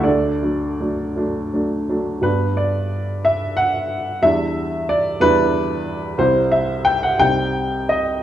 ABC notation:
X:1
M:6/8
L:1/16
Q:3/8=60
K:G
V:1 name="Upright piano"
[DAd]6 z6 | B2 d4 e2 f4 | e4 d2 B6 | c2 e2 g f g4 _e2 |]
V:2 name="Upright piano"
D,,2 [F,A,D]2 [F,A,D]2 [F,A,D]2 [F,A,D]2 [F,A,D]2 | [G,,G,B,D]12 | [E,,G,DE]6 [E,,G,DE]6 | [C,,G,CE]6 [C,,G,C_E]6 |]